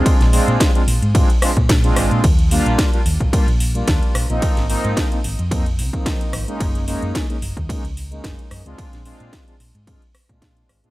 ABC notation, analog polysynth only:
X:1
M:4/4
L:1/16
Q:"Swing 16ths" 1/4=110
K:Bbmix
V:1 name="Analog polysynth"
[A,CDF]2 [A,CDF]3 [A,CDF] z2 [A,CDF] z [A,CDF] z2 [A,CDF]3 | z2 [G,B,DF]3 [G,B,DF] z2 [G,B,DF] z2 [G,B,DF]4 [F,B,CE]- | [F,B,CE]2 [F,B,CE]3 [F,B,CE] z2 [F,B,CE] z2 [F,B,CE]4 [A,B,_DE]- | [A,B,_DE]2 [A,B,DE]3 [A,B,DE] z2 [A,B,DE] z2 [A,B,DE]4 [A,C=DF]- |
[A,CDF]2 [A,CDF]3 [A,CDF] z2 [A,CDF] z2 [A,CDF]4 [A,CDF] |]